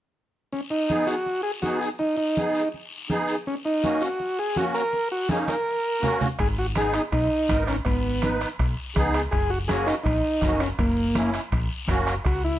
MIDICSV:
0, 0, Header, 1, 6, 480
1, 0, Start_track
1, 0, Key_signature, 5, "minor"
1, 0, Tempo, 366524
1, 694, Time_signature, 4, 2, 24, 8
1, 16488, End_track
2, 0, Start_track
2, 0, Title_t, "Transistor combo organ"
2, 0, Program_c, 0, 18
2, 688, Note_on_c, 0, 61, 62
2, 797, Note_off_c, 0, 61, 0
2, 923, Note_on_c, 0, 63, 73
2, 1399, Note_on_c, 0, 66, 83
2, 1424, Note_off_c, 0, 63, 0
2, 1853, Note_off_c, 0, 66, 0
2, 1872, Note_on_c, 0, 68, 93
2, 1985, Note_off_c, 0, 68, 0
2, 2124, Note_on_c, 0, 66, 85
2, 2352, Note_off_c, 0, 66, 0
2, 2371, Note_on_c, 0, 68, 77
2, 2480, Note_off_c, 0, 68, 0
2, 2609, Note_on_c, 0, 63, 78
2, 2828, Note_off_c, 0, 63, 0
2, 2844, Note_on_c, 0, 63, 69
2, 3519, Note_off_c, 0, 63, 0
2, 4546, Note_on_c, 0, 61, 68
2, 4652, Note_off_c, 0, 61, 0
2, 4782, Note_on_c, 0, 63, 81
2, 5256, Note_on_c, 0, 66, 74
2, 5273, Note_off_c, 0, 63, 0
2, 5748, Note_on_c, 0, 68, 89
2, 5750, Note_off_c, 0, 66, 0
2, 5987, Note_on_c, 0, 66, 93
2, 5988, Note_off_c, 0, 68, 0
2, 6092, Note_off_c, 0, 66, 0
2, 6213, Note_on_c, 0, 70, 90
2, 6660, Note_off_c, 0, 70, 0
2, 6701, Note_on_c, 0, 66, 80
2, 6922, Note_off_c, 0, 66, 0
2, 6954, Note_on_c, 0, 68, 88
2, 7058, Note_off_c, 0, 68, 0
2, 7190, Note_on_c, 0, 70, 79
2, 8090, Note_off_c, 0, 70, 0
2, 8379, Note_on_c, 0, 68, 87
2, 8486, Note_off_c, 0, 68, 0
2, 8625, Note_on_c, 0, 66, 84
2, 8731, Note_off_c, 0, 66, 0
2, 8871, Note_on_c, 0, 68, 99
2, 9086, Note_off_c, 0, 68, 0
2, 9091, Note_on_c, 0, 63, 72
2, 9200, Note_off_c, 0, 63, 0
2, 9326, Note_on_c, 0, 63, 78
2, 9999, Note_off_c, 0, 63, 0
2, 10060, Note_on_c, 0, 61, 75
2, 10166, Note_off_c, 0, 61, 0
2, 10283, Note_on_c, 0, 59, 59
2, 10958, Note_off_c, 0, 59, 0
2, 12195, Note_on_c, 0, 68, 88
2, 12443, Note_on_c, 0, 66, 93
2, 12452, Note_off_c, 0, 68, 0
2, 12554, Note_off_c, 0, 66, 0
2, 12675, Note_on_c, 0, 68, 95
2, 12919, Note_on_c, 0, 63, 77
2, 12932, Note_off_c, 0, 68, 0
2, 13031, Note_off_c, 0, 63, 0
2, 13142, Note_on_c, 0, 63, 75
2, 13881, Note_on_c, 0, 61, 72
2, 13900, Note_off_c, 0, 63, 0
2, 13992, Note_off_c, 0, 61, 0
2, 14134, Note_on_c, 0, 58, 63
2, 14804, Note_off_c, 0, 58, 0
2, 16058, Note_on_c, 0, 66, 78
2, 16280, Note_off_c, 0, 66, 0
2, 16298, Note_on_c, 0, 64, 78
2, 16488, Note_off_c, 0, 64, 0
2, 16488, End_track
3, 0, Start_track
3, 0, Title_t, "Accordion"
3, 0, Program_c, 1, 21
3, 1158, Note_on_c, 1, 59, 67
3, 1158, Note_on_c, 1, 63, 52
3, 1170, Note_on_c, 1, 68, 70
3, 1502, Note_off_c, 1, 59, 0
3, 1503, Note_off_c, 1, 63, 0
3, 1508, Note_off_c, 1, 68, 0
3, 2127, Note_on_c, 1, 59, 62
3, 2132, Note_on_c, 1, 63, 60
3, 2136, Note_on_c, 1, 68, 62
3, 2467, Note_off_c, 1, 59, 0
3, 2470, Note_off_c, 1, 63, 0
3, 2472, Note_off_c, 1, 68, 0
3, 3095, Note_on_c, 1, 59, 61
3, 3103, Note_on_c, 1, 63, 56
3, 3105, Note_on_c, 1, 68, 67
3, 3431, Note_off_c, 1, 59, 0
3, 3435, Note_off_c, 1, 63, 0
3, 3436, Note_off_c, 1, 68, 0
3, 4053, Note_on_c, 1, 59, 80
3, 4060, Note_on_c, 1, 63, 68
3, 4064, Note_on_c, 1, 68, 77
3, 4390, Note_off_c, 1, 59, 0
3, 4394, Note_off_c, 1, 63, 0
3, 4396, Note_off_c, 1, 68, 0
3, 5009, Note_on_c, 1, 58, 65
3, 5013, Note_on_c, 1, 61, 59
3, 5020, Note_on_c, 1, 66, 66
3, 5348, Note_off_c, 1, 58, 0
3, 5350, Note_off_c, 1, 61, 0
3, 5354, Note_off_c, 1, 66, 0
3, 5976, Note_on_c, 1, 58, 67
3, 5978, Note_on_c, 1, 61, 57
3, 5981, Note_on_c, 1, 66, 73
3, 6311, Note_off_c, 1, 58, 0
3, 6312, Note_off_c, 1, 61, 0
3, 6314, Note_off_c, 1, 66, 0
3, 6922, Note_on_c, 1, 58, 72
3, 6928, Note_on_c, 1, 61, 60
3, 6930, Note_on_c, 1, 63, 70
3, 7264, Note_off_c, 1, 58, 0
3, 7267, Note_off_c, 1, 61, 0
3, 7268, Note_off_c, 1, 63, 0
3, 7869, Note_on_c, 1, 58, 77
3, 7877, Note_on_c, 1, 66, 78
3, 7881, Note_on_c, 1, 61, 67
3, 8218, Note_off_c, 1, 58, 0
3, 8222, Note_off_c, 1, 66, 0
3, 8224, Note_off_c, 1, 61, 0
3, 8852, Note_on_c, 1, 59, 66
3, 8852, Note_on_c, 1, 63, 61
3, 8860, Note_on_c, 1, 68, 76
3, 9189, Note_off_c, 1, 59, 0
3, 9189, Note_off_c, 1, 63, 0
3, 9193, Note_off_c, 1, 68, 0
3, 9814, Note_on_c, 1, 63, 63
3, 9815, Note_on_c, 1, 59, 61
3, 9824, Note_on_c, 1, 70, 68
3, 10150, Note_off_c, 1, 63, 0
3, 10151, Note_off_c, 1, 59, 0
3, 10155, Note_off_c, 1, 70, 0
3, 10766, Note_on_c, 1, 59, 63
3, 10771, Note_on_c, 1, 63, 59
3, 10781, Note_on_c, 1, 71, 66
3, 11106, Note_off_c, 1, 59, 0
3, 11109, Note_off_c, 1, 63, 0
3, 11113, Note_off_c, 1, 71, 0
3, 11728, Note_on_c, 1, 59, 84
3, 11730, Note_on_c, 1, 63, 74
3, 11735, Note_on_c, 1, 68, 85
3, 12067, Note_off_c, 1, 59, 0
3, 12068, Note_off_c, 1, 63, 0
3, 12071, Note_off_c, 1, 68, 0
3, 12682, Note_on_c, 1, 58, 70
3, 12690, Note_on_c, 1, 61, 59
3, 12698, Note_on_c, 1, 66, 78
3, 13024, Note_off_c, 1, 58, 0
3, 13028, Note_off_c, 1, 61, 0
3, 13032, Note_off_c, 1, 66, 0
3, 13652, Note_on_c, 1, 58, 64
3, 13657, Note_on_c, 1, 61, 59
3, 13657, Note_on_c, 1, 66, 67
3, 13989, Note_off_c, 1, 58, 0
3, 13991, Note_off_c, 1, 61, 0
3, 13992, Note_off_c, 1, 66, 0
3, 14601, Note_on_c, 1, 61, 54
3, 14604, Note_on_c, 1, 58, 69
3, 14605, Note_on_c, 1, 64, 69
3, 14944, Note_off_c, 1, 61, 0
3, 14946, Note_off_c, 1, 58, 0
3, 14946, Note_off_c, 1, 64, 0
3, 15552, Note_on_c, 1, 58, 80
3, 15561, Note_on_c, 1, 61, 68
3, 15564, Note_on_c, 1, 66, 76
3, 15900, Note_off_c, 1, 58, 0
3, 15904, Note_off_c, 1, 61, 0
3, 15905, Note_off_c, 1, 66, 0
3, 16488, End_track
4, 0, Start_track
4, 0, Title_t, "Fingered electric bass"
4, 0, Program_c, 2, 33
4, 8374, Note_on_c, 2, 32, 95
4, 9142, Note_off_c, 2, 32, 0
4, 9333, Note_on_c, 2, 35, 84
4, 9526, Note_off_c, 2, 35, 0
4, 9817, Note_on_c, 2, 32, 78
4, 10199, Note_off_c, 2, 32, 0
4, 10289, Note_on_c, 2, 32, 89
4, 11059, Note_off_c, 2, 32, 0
4, 11254, Note_on_c, 2, 35, 84
4, 11446, Note_off_c, 2, 35, 0
4, 11737, Note_on_c, 2, 37, 83
4, 12119, Note_off_c, 2, 37, 0
4, 12213, Note_on_c, 2, 30, 91
4, 12982, Note_off_c, 2, 30, 0
4, 13168, Note_on_c, 2, 34, 87
4, 13363, Note_off_c, 2, 34, 0
4, 13643, Note_on_c, 2, 30, 74
4, 14031, Note_off_c, 2, 30, 0
4, 14125, Note_on_c, 2, 30, 86
4, 14897, Note_off_c, 2, 30, 0
4, 15090, Note_on_c, 2, 34, 85
4, 15284, Note_off_c, 2, 34, 0
4, 15567, Note_on_c, 2, 30, 73
4, 15954, Note_off_c, 2, 30, 0
4, 16047, Note_on_c, 2, 37, 94
4, 16488, Note_off_c, 2, 37, 0
4, 16488, End_track
5, 0, Start_track
5, 0, Title_t, "Two-headed folk drums"
5, 8364, Note_on_c, 9, 37, 78
5, 8369, Note_on_c, 9, 36, 75
5, 8494, Note_off_c, 9, 37, 0
5, 8500, Note_off_c, 9, 36, 0
5, 8848, Note_on_c, 9, 37, 65
5, 8979, Note_off_c, 9, 37, 0
5, 9082, Note_on_c, 9, 37, 82
5, 9213, Note_off_c, 9, 37, 0
5, 9328, Note_on_c, 9, 36, 75
5, 9332, Note_on_c, 9, 37, 68
5, 9459, Note_off_c, 9, 36, 0
5, 9463, Note_off_c, 9, 37, 0
5, 9811, Note_on_c, 9, 36, 67
5, 9818, Note_on_c, 9, 37, 80
5, 9942, Note_off_c, 9, 36, 0
5, 9949, Note_off_c, 9, 37, 0
5, 10048, Note_on_c, 9, 37, 88
5, 10178, Note_off_c, 9, 37, 0
5, 10277, Note_on_c, 9, 37, 77
5, 10287, Note_on_c, 9, 36, 73
5, 10408, Note_off_c, 9, 37, 0
5, 10418, Note_off_c, 9, 36, 0
5, 10773, Note_on_c, 9, 37, 72
5, 10904, Note_off_c, 9, 37, 0
5, 11016, Note_on_c, 9, 37, 76
5, 11147, Note_off_c, 9, 37, 0
5, 11256, Note_on_c, 9, 36, 69
5, 11262, Note_on_c, 9, 37, 77
5, 11387, Note_off_c, 9, 36, 0
5, 11392, Note_off_c, 9, 37, 0
5, 11735, Note_on_c, 9, 36, 62
5, 11735, Note_on_c, 9, 37, 82
5, 11866, Note_off_c, 9, 36, 0
5, 11866, Note_off_c, 9, 37, 0
5, 11980, Note_on_c, 9, 37, 93
5, 12111, Note_off_c, 9, 37, 0
5, 12209, Note_on_c, 9, 37, 76
5, 12213, Note_on_c, 9, 36, 79
5, 12340, Note_off_c, 9, 37, 0
5, 12344, Note_off_c, 9, 36, 0
5, 12691, Note_on_c, 9, 37, 71
5, 12822, Note_off_c, 9, 37, 0
5, 12933, Note_on_c, 9, 37, 80
5, 13064, Note_off_c, 9, 37, 0
5, 13168, Note_on_c, 9, 36, 75
5, 13169, Note_on_c, 9, 37, 71
5, 13299, Note_off_c, 9, 36, 0
5, 13300, Note_off_c, 9, 37, 0
5, 13639, Note_on_c, 9, 37, 72
5, 13646, Note_on_c, 9, 36, 64
5, 13770, Note_off_c, 9, 37, 0
5, 13777, Note_off_c, 9, 36, 0
5, 13885, Note_on_c, 9, 37, 90
5, 14016, Note_off_c, 9, 37, 0
5, 14126, Note_on_c, 9, 37, 75
5, 14127, Note_on_c, 9, 36, 81
5, 14257, Note_off_c, 9, 37, 0
5, 14258, Note_off_c, 9, 36, 0
5, 14609, Note_on_c, 9, 37, 70
5, 14740, Note_off_c, 9, 37, 0
5, 14859, Note_on_c, 9, 37, 78
5, 14990, Note_off_c, 9, 37, 0
5, 15090, Note_on_c, 9, 36, 75
5, 15101, Note_on_c, 9, 37, 79
5, 15221, Note_off_c, 9, 36, 0
5, 15232, Note_off_c, 9, 37, 0
5, 15565, Note_on_c, 9, 37, 73
5, 15567, Note_on_c, 9, 36, 65
5, 15696, Note_off_c, 9, 37, 0
5, 15698, Note_off_c, 9, 36, 0
5, 15806, Note_on_c, 9, 37, 81
5, 15937, Note_off_c, 9, 37, 0
5, 16037, Note_on_c, 9, 37, 79
5, 16044, Note_on_c, 9, 36, 75
5, 16168, Note_off_c, 9, 37, 0
5, 16175, Note_off_c, 9, 36, 0
5, 16488, End_track
6, 0, Start_track
6, 0, Title_t, "Drums"
6, 687, Note_on_c, 9, 74, 59
6, 695, Note_on_c, 9, 63, 29
6, 818, Note_off_c, 9, 74, 0
6, 826, Note_off_c, 9, 63, 0
6, 1165, Note_on_c, 9, 73, 58
6, 1178, Note_on_c, 9, 63, 66
6, 1296, Note_off_c, 9, 73, 0
6, 1309, Note_off_c, 9, 63, 0
6, 1404, Note_on_c, 9, 73, 63
6, 1535, Note_off_c, 9, 73, 0
6, 1650, Note_on_c, 9, 74, 66
6, 1655, Note_on_c, 9, 63, 28
6, 1781, Note_off_c, 9, 74, 0
6, 1786, Note_off_c, 9, 63, 0
6, 2127, Note_on_c, 9, 73, 63
6, 2132, Note_on_c, 9, 63, 61
6, 2258, Note_off_c, 9, 73, 0
6, 2263, Note_off_c, 9, 63, 0
6, 2372, Note_on_c, 9, 73, 64
6, 2503, Note_off_c, 9, 73, 0
6, 2603, Note_on_c, 9, 74, 61
6, 2626, Note_on_c, 9, 63, 30
6, 2734, Note_off_c, 9, 74, 0
6, 2757, Note_off_c, 9, 63, 0
6, 3087, Note_on_c, 9, 73, 64
6, 3106, Note_on_c, 9, 63, 68
6, 3218, Note_off_c, 9, 73, 0
6, 3237, Note_off_c, 9, 63, 0
6, 3334, Note_on_c, 9, 73, 59
6, 3465, Note_off_c, 9, 73, 0
6, 3564, Note_on_c, 9, 74, 65
6, 3591, Note_on_c, 9, 63, 28
6, 3695, Note_off_c, 9, 74, 0
6, 3722, Note_off_c, 9, 63, 0
6, 4055, Note_on_c, 9, 73, 63
6, 4057, Note_on_c, 9, 63, 68
6, 4186, Note_off_c, 9, 73, 0
6, 4188, Note_off_c, 9, 63, 0
6, 4293, Note_on_c, 9, 73, 67
6, 4424, Note_off_c, 9, 73, 0
6, 4534, Note_on_c, 9, 74, 64
6, 4547, Note_on_c, 9, 63, 28
6, 4665, Note_off_c, 9, 74, 0
6, 4678, Note_off_c, 9, 63, 0
6, 5006, Note_on_c, 9, 73, 62
6, 5027, Note_on_c, 9, 63, 72
6, 5137, Note_off_c, 9, 73, 0
6, 5158, Note_off_c, 9, 63, 0
6, 5249, Note_on_c, 9, 73, 64
6, 5380, Note_off_c, 9, 73, 0
6, 5492, Note_on_c, 9, 74, 62
6, 5501, Note_on_c, 9, 63, 28
6, 5623, Note_off_c, 9, 74, 0
6, 5632, Note_off_c, 9, 63, 0
6, 5971, Note_on_c, 9, 73, 65
6, 5977, Note_on_c, 9, 63, 75
6, 6102, Note_off_c, 9, 73, 0
6, 6108, Note_off_c, 9, 63, 0
6, 6213, Note_on_c, 9, 73, 59
6, 6344, Note_off_c, 9, 73, 0
6, 6457, Note_on_c, 9, 74, 58
6, 6459, Note_on_c, 9, 63, 31
6, 6588, Note_off_c, 9, 74, 0
6, 6590, Note_off_c, 9, 63, 0
6, 6928, Note_on_c, 9, 63, 89
6, 6936, Note_on_c, 9, 73, 61
6, 7059, Note_off_c, 9, 63, 0
6, 7067, Note_off_c, 9, 73, 0
6, 7174, Note_on_c, 9, 63, 66
6, 7181, Note_on_c, 9, 73, 69
6, 7305, Note_off_c, 9, 63, 0
6, 7312, Note_off_c, 9, 73, 0
6, 7417, Note_on_c, 9, 74, 61
6, 7548, Note_off_c, 9, 74, 0
6, 7896, Note_on_c, 9, 64, 71
6, 7897, Note_on_c, 9, 73, 68
6, 8027, Note_off_c, 9, 64, 0
6, 8028, Note_off_c, 9, 73, 0
6, 8127, Note_on_c, 9, 73, 65
6, 8135, Note_on_c, 9, 64, 80
6, 8258, Note_off_c, 9, 73, 0
6, 8266, Note_off_c, 9, 64, 0
6, 8361, Note_on_c, 9, 74, 64
6, 8369, Note_on_c, 9, 65, 61
6, 8388, Note_on_c, 9, 63, 31
6, 8492, Note_off_c, 9, 74, 0
6, 8500, Note_off_c, 9, 65, 0
6, 8519, Note_off_c, 9, 63, 0
6, 8843, Note_on_c, 9, 73, 59
6, 8846, Note_on_c, 9, 65, 67
6, 8854, Note_on_c, 9, 63, 72
6, 8974, Note_off_c, 9, 73, 0
6, 8977, Note_off_c, 9, 65, 0
6, 8985, Note_off_c, 9, 63, 0
6, 9084, Note_on_c, 9, 65, 59
6, 9084, Note_on_c, 9, 73, 64
6, 9215, Note_off_c, 9, 65, 0
6, 9215, Note_off_c, 9, 73, 0
6, 9330, Note_on_c, 9, 65, 55
6, 9331, Note_on_c, 9, 74, 60
6, 9336, Note_on_c, 9, 63, 29
6, 9461, Note_off_c, 9, 65, 0
6, 9462, Note_off_c, 9, 74, 0
6, 9467, Note_off_c, 9, 63, 0
6, 9811, Note_on_c, 9, 63, 73
6, 9815, Note_on_c, 9, 65, 62
6, 9816, Note_on_c, 9, 73, 64
6, 9942, Note_off_c, 9, 63, 0
6, 9946, Note_off_c, 9, 65, 0
6, 9947, Note_off_c, 9, 73, 0
6, 10051, Note_on_c, 9, 73, 64
6, 10060, Note_on_c, 9, 65, 56
6, 10182, Note_off_c, 9, 73, 0
6, 10191, Note_off_c, 9, 65, 0
6, 10286, Note_on_c, 9, 74, 58
6, 10297, Note_on_c, 9, 65, 62
6, 10298, Note_on_c, 9, 63, 31
6, 10417, Note_off_c, 9, 74, 0
6, 10428, Note_off_c, 9, 65, 0
6, 10429, Note_off_c, 9, 63, 0
6, 10763, Note_on_c, 9, 73, 56
6, 10765, Note_on_c, 9, 65, 70
6, 10778, Note_on_c, 9, 63, 79
6, 10894, Note_off_c, 9, 73, 0
6, 10896, Note_off_c, 9, 65, 0
6, 10909, Note_off_c, 9, 63, 0
6, 11010, Note_on_c, 9, 73, 68
6, 11021, Note_on_c, 9, 65, 57
6, 11141, Note_off_c, 9, 73, 0
6, 11152, Note_off_c, 9, 65, 0
6, 11254, Note_on_c, 9, 65, 57
6, 11255, Note_on_c, 9, 74, 61
6, 11256, Note_on_c, 9, 63, 31
6, 11385, Note_off_c, 9, 65, 0
6, 11386, Note_off_c, 9, 74, 0
6, 11387, Note_off_c, 9, 63, 0
6, 11733, Note_on_c, 9, 65, 60
6, 11734, Note_on_c, 9, 63, 64
6, 11734, Note_on_c, 9, 73, 73
6, 11864, Note_off_c, 9, 65, 0
6, 11865, Note_off_c, 9, 63, 0
6, 11865, Note_off_c, 9, 73, 0
6, 11973, Note_on_c, 9, 65, 63
6, 11976, Note_on_c, 9, 73, 67
6, 12104, Note_off_c, 9, 65, 0
6, 12107, Note_off_c, 9, 73, 0
6, 12212, Note_on_c, 9, 65, 63
6, 12219, Note_on_c, 9, 63, 29
6, 12219, Note_on_c, 9, 74, 65
6, 12343, Note_off_c, 9, 65, 0
6, 12350, Note_off_c, 9, 63, 0
6, 12350, Note_off_c, 9, 74, 0
6, 12692, Note_on_c, 9, 65, 71
6, 12693, Note_on_c, 9, 63, 79
6, 12698, Note_on_c, 9, 73, 61
6, 12823, Note_off_c, 9, 65, 0
6, 12824, Note_off_c, 9, 63, 0
6, 12829, Note_off_c, 9, 73, 0
6, 12936, Note_on_c, 9, 65, 61
6, 12943, Note_on_c, 9, 73, 68
6, 13067, Note_off_c, 9, 65, 0
6, 13074, Note_off_c, 9, 73, 0
6, 13174, Note_on_c, 9, 63, 28
6, 13179, Note_on_c, 9, 65, 61
6, 13183, Note_on_c, 9, 74, 62
6, 13304, Note_off_c, 9, 63, 0
6, 13310, Note_off_c, 9, 65, 0
6, 13314, Note_off_c, 9, 74, 0
6, 13646, Note_on_c, 9, 63, 70
6, 13659, Note_on_c, 9, 73, 68
6, 13660, Note_on_c, 9, 65, 62
6, 13660, Note_on_c, 9, 66, 58
6, 13777, Note_off_c, 9, 63, 0
6, 13790, Note_off_c, 9, 73, 0
6, 13791, Note_off_c, 9, 65, 0
6, 13791, Note_off_c, 9, 66, 0
6, 13885, Note_on_c, 9, 65, 63
6, 13897, Note_on_c, 9, 73, 67
6, 14016, Note_off_c, 9, 65, 0
6, 14028, Note_off_c, 9, 73, 0
6, 14128, Note_on_c, 9, 65, 67
6, 14134, Note_on_c, 9, 74, 62
6, 14136, Note_on_c, 9, 63, 29
6, 14259, Note_off_c, 9, 65, 0
6, 14265, Note_off_c, 9, 74, 0
6, 14267, Note_off_c, 9, 63, 0
6, 14602, Note_on_c, 9, 63, 76
6, 14607, Note_on_c, 9, 65, 72
6, 14607, Note_on_c, 9, 73, 61
6, 14733, Note_off_c, 9, 63, 0
6, 14738, Note_off_c, 9, 65, 0
6, 14738, Note_off_c, 9, 73, 0
6, 14845, Note_on_c, 9, 73, 65
6, 14847, Note_on_c, 9, 65, 57
6, 14976, Note_off_c, 9, 73, 0
6, 14978, Note_off_c, 9, 65, 0
6, 15080, Note_on_c, 9, 63, 31
6, 15089, Note_on_c, 9, 65, 60
6, 15091, Note_on_c, 9, 74, 66
6, 15211, Note_off_c, 9, 63, 0
6, 15220, Note_off_c, 9, 65, 0
6, 15222, Note_off_c, 9, 74, 0
6, 15553, Note_on_c, 9, 63, 71
6, 15564, Note_on_c, 9, 73, 66
6, 15570, Note_on_c, 9, 65, 65
6, 15684, Note_off_c, 9, 63, 0
6, 15695, Note_off_c, 9, 73, 0
6, 15701, Note_off_c, 9, 65, 0
6, 15805, Note_on_c, 9, 73, 65
6, 15814, Note_on_c, 9, 65, 60
6, 15936, Note_off_c, 9, 73, 0
6, 15945, Note_off_c, 9, 65, 0
6, 16042, Note_on_c, 9, 63, 28
6, 16046, Note_on_c, 9, 74, 68
6, 16059, Note_on_c, 9, 65, 66
6, 16173, Note_off_c, 9, 63, 0
6, 16177, Note_off_c, 9, 74, 0
6, 16190, Note_off_c, 9, 65, 0
6, 16488, End_track
0, 0, End_of_file